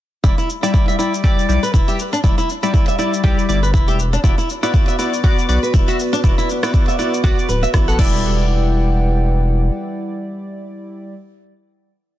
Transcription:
0.24 E1 G3 E4 D5, kick, cabasa
0.38 E4, cabasa
0.50 cabasa
0.63 G3 E4 D5, cabasa
0.74 E4, kick, cabasa
0.88 E5, cabasa
0.99 G3 E4 D5, cabasa
1.14 cabasa
1.24 G3 E4 G4 D5, kick, cabasa
1.39 cabasa
1.49 B1 G3 E4 D5, cabasa
1.63 B4, cabasa
1.74 E1 E4, kick, cabasa
1.88 G3 E4 G4 E5, cabasa
1.99 cabasa
2.13 D4, cabasa
2.24 E1 G3 E4 D5, kick, cabasa
2.38 E4, cabasa
2.49 cabasa
2.63 G3 E4 D5, cabasa
2.74 E4, kick, cabasa
2.88 E5, cabasa
2.99 G3 E4 D5, cabasa
3.14 cabasa
3.24 B1 G3 E4 G4 D5, kick, cabasa
3.39 cabasa
3.49 G1 G3 E4 D5, cabasa
3.63 B4, cabasa
3.74 E1 E4, kick, cabasa
3.88 G3 E4 G4 E5, cabasa
3.99 cabasa
4.13 D4, cabasa
4.24 E1 B3 E4 F#4 B4 D5, kick, cabasa
4.38 E4, cabasa
4.50 cabasa
4.63 B3 E4 F#4 D5, cabasa
4.74 E4, kick, cabasa
4.88 E5, cabasa
4.99 B3 E4 F#4 D5, cabasa
5.14 cabasa
5.24 B3 F#4 D5, kick, cabasa
5.39 cabasa
5.49 B1 B3 F#4 D5, cabasa
5.63 B4, cabasa
5.74 E1 E4, kick, cabasa
5.88 B3 F#4 E5, cabasa
5.99 cabasa
6.13 D4, cabasa
6.24 E1 B3 E4 F#4 D5, kick, cabasa
6.38 E4, cabasa
6.49 cabasa
6.63 B3 E4 F#4 D5, cross-stick, cabasa
6.74 E4, kick, cabasa
6.88 E5, cabasa
6.99 B3 E4 F#4 D5, cabasa
7.14 cabasa
7.24 B1 B3 F#4 D5, kick, cabasa
7.39 cabasa
7.49 D1 B4, cabasa
7.63 E5, cabasa
7.74 A1 B3 E4 F#4 D5, kick, cross-stick, cabasa
7.88 B3 F#4 A4 F#5, cabasa
7.99 E1 G3 E4 B4 D5 F#5 G5, kick, crash

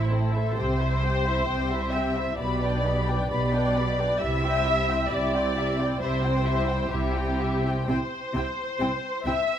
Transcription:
Already playing: A1 A2 E4 C5 E5
0.11 C4 A4 C5
0.33 E4 A4 C5 E5
0.55 C2 C3 C4 G4 C5 G5
0.80 E4 C5 E5
1.03 C4 G4 G5
1.26 E4 C5 E5
1.48 C2 C3 C4 G4 G5
1.71 E4 C5 E5
1.92 C4 G4 E5 G5
2.15 E4 C5 E5
2.38 B1 B2 B3 G4 D5 B5
2.62 D4 B4 G5
2.85 B3 G4 B5
3.08 D4 B4 G5
3.30 B1 B2 B3 G4 D5 B5
3.54 D4 B4 G5
3.76 B3 G4 B5
4.00 D4 B4 G5
4.20 C2 C3 E4 G4 E5
4.44 C4 E4 G5
4.66 E4 G4 E5
4.90 C4 E4 G5
5.11 C2 C3 E4 G4 D5 E5
5.35 C4 E4 G5
5.57 E4 G4 E5
5.80 C4 E4 G5
6.01 C2 C3 E4 G4 C5 E5
6.24 C4 E4 G5
6.45 E4 G4 E5
6.67 C4 E4 G5
6.90 C2 C3 E4 G4 E5
7.14 C4 E4 G5
7.39 E4 G4 E5
7.65 C4 E4 G5
7.88 C2 C3 C4 E4 C5 G5
8.35 C2 C3 C4 E4 G5
8.80 C2 C3 C4 E4 G5
9.25 C2 C3 C4 E4 E5 G5

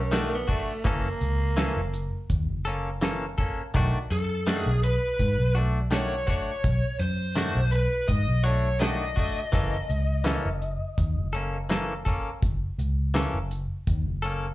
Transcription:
Already playing: B1 C#4 A#4
0.12 D#3 A3 D4 F#4, snare, closed hi-hat
0.16 A3
0.34 B3
0.48 A3 D4 F#4, kick, closed hi-hat
0.84 F#1 E3 A#3 C#4 A4, kick, closed hi-hat
1.21 C#2, closed hi-hat
1.57 E3 A#3 C#4 A4, snare, closed hi-hat
1.76 F#1
1.93 closed hi-hat
2.30 D#2, kick, closed hi-hat
2.48 F#1
2.65 A#3 C#4 A4, closed hi-hat
3.01 E3 A#3 C#4 A4, snare, closed hi-hat
3.38 A#3 C#4 A4, kick, closed hi-hat
3.74 B1 D#3 A3 D4 F#4, kick, closed hi-hat
4.11 F#2 A4, closed hi-hat
4.47 D#3 A3 D4 F#4, snare, closed hi-hat
4.59 G#4
4.66 B1
4.83 B4, closed hi-hat
5.19 G#2, kick, closed hi-hat
5.38 B1
5.55 A3 D4 F#4, closed hi-hat
5.91 D#3 A3 D4 F#4 C#5, snare, closed hi-hat
6.27 A3 D4 F#4 C#5, kick, closed hi-hat
6.64 B1, kick, closed hi-hat
6.99 F#2 C5, closed hi-hat
7.36 D#3 A3 D4 F#4, snare, closed hi-hat
7.55 B1
7.71 B4, closed hi-hat
8.08 G#2 D#5, kick, closed hi-hat
8.28 B1
8.44 A3 D4 F#4 C#5, closed hi-hat
8.80 D#3 A3 D4 F#4 D#5, snare, closed hi-hat
9.16 A3 D4 F#4, kick, closed hi-hat
9.52 F#1 E3 A#3 C#4 A4, kick, closed hi-hat
9.89 C#2, closed hi-hat
10.24 E3 A#3 C#4 A4, snare, closed hi-hat
10.45 F#1
10.62 closed hi-hat
10.98 D#2, kick, closed hi-hat
11.17 F#1
11.33 A#3 C#4 A4, closed hi-hat
11.70 E3 A#3 C#4 A4, snare, closed hi-hat
12.05 A#3 C#4 A4, kick, closed hi-hat
12.43 F#1, kick, closed hi-hat
12.78 C#2, closed hi-hat
13.14 E3 A#3 C#4 A4, snare, closed hi-hat
13.34 F#1
13.51 closed hi-hat
13.87 D#2, kick, closed hi-hat
14.06 F#1
14.22 A#3 C#4 A4, closed hi-hat

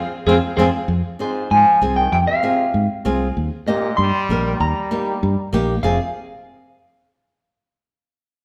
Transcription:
0.26 F2 C4 F4 G#4 C5 F5
0.57 F2 C4 F4 G#4 C5 F5
0.88 F2
1.19 G#2 C4 F4 G#4 C5
1.51 G#2 F3 G#5
1.81 C2 C4 F4 G#4
1.96 D#3 G5
2.11 F2 C3 G5
2.27 C3 F5
2.43 C4 F4 G#4
2.74 G#2
3.05 C2 C4 F4 G#4
3.37 D#2
3.67 A#2 A#3 D#4 G4 D#5
3.97 G2 G3 C6
4.29 A#1 A#3 D#4 A#4
4.60 D#2 G3 A#5
4.91 A#3 D#4 G4
5.23 G2
5.53 A#1 A#3 D#4 G4
5.83 F1 C3 C4 F4 G#4 F5

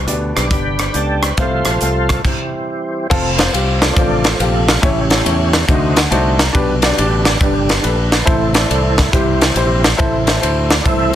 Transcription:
Already playing: B2
0.07 D2 B3 D4 G4 D5, closed hi-hat
0.34 B1 D3 G3 B3 D5, cross-stick, closed hi-hat
0.50 G1 B3 D4 G4 B4 D5, kick, closed hi-hat
0.79 cross-stick, closed hi-hat
0.93 C#2 B3 D4 G4 A4 D5, closed hi-hat
1.23 B4, cross-stick, closed hi-hat
1.37 C2 C3 F3 A3 C4 F4 C5, kick, closed hi-hat
1.42 A3 F4 A4 C5
1.65 A#1, cross-stick, closed hi-hat
1.81 C2 A3 C4 F4 A4, closed hi-hat
2.09 kick, cross-stick, closed hi-hat
2.25 E3 G3 C4, kick, crash
3.10 F1 F3 A3 C4 F4 A4, kick, crash
3.38 C4 F4 C5, snare, ride
3.53 C2 C4 F4 G4, ride
3.81 F3 A3 C4 D4, snare, ride
3.97 A1 C4 F4 C5, kick, ride
4.24 snare, ride
4.35 C4
4.40 A#1 C3 F3 A3 C4 F4 G4, ride
4.69 snare, ride
4.82 A1 A2 C#3 E3 G3 A3 C#4 E4 G4 C#5, kick, ride
5.10 A3 C#4 E4 G4 C#5, snare, ride
5.25 E2 A3 C#4 E4 G4 C#5, ride
5.53 snare, ride
5.68 D2 D3 F#3 A3 C4 D4 D#4 F#4 C5, kick, ride
5.96 F#5, snare, ride
6.10 C2 A3 D4 D#4 F#4 C5 A5, ride
6.39 A#5, snare, ride
6.53 B1 B2 D4 G4 B4, kick, ride
6.82 D3 G3 B3 D4 G4 D5, snare, ride
6.98 A1 D4 G4 D5, ride
7.25 D4, snare, ride
7.40 D3 G3 B3 D4 G4 D5, kick, ride
7.69 D3 G3 B3, snare, ride
7.82 A#1 D4 G4 B4, ride
7.87 A3
8.12 B3, snare, ride
8.25 A1 A2 E3 E4 A4 C5, kick, ride
8.29 A3 C4
8.53 E4 A4 D5, snare, ride
8.69 C2 E4 A4 D5, ride
8.98 kick, snare, ride
9.12 C2 C3 E3 G3 C4 E4 G4 C5, kick, ride
9.41 snare, ride
9.55 A#1 E4 G4 C5, ride
9.84 snare, ride
9.97 A1 A2 E3 A3 E4 A4 C5, kick, ride
10.01 C4
10.26 E4 A4 C5, snare, ride
10.40 D2 E4 A4 C5, ride
10.71 D4, snare, ride
10.83 C2 E3 A3 C4 E4 A4 C5, kick, ride

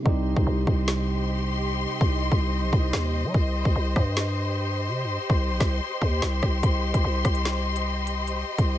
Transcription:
0.02 C2 C3 G3 G4 C5 D#5 C6, kick
0.07 D#4 G4
0.36 C2, kick
0.47 C2
0.67 C2, kick
0.88 snare
2.01 C2, kick
2.32 C2, kick
2.62 B1
2.73 C2, kick
2.93 D#2, snare
3.24 G3
3.34 C2 G4 C6, kick
3.65 C2, kick
3.76 C2
3.96 G2, kick, cross-stick
4.17 snare
4.88 C3
5.04 G2
5.30 C2, kick
5.50 B1
5.60 C2, kick, cross-stick, snare
6.02 D#2, kick
6.22 C2, snare
6.43 C2, kick, cross-stick
6.63 C2 D#5, kick, closed hi-hat
6.94 C2, kick, closed hi-hat
7.04 C2
7.25 C2, kick, cross-stick, closed hi-hat
7.35 closed hi-hat
7.45 snare, closed hi-hat
7.76 closed hi-hat
8.07 closed hi-hat
8.27 closed hi-hat
8.58 C2, kick, closed hi-hat

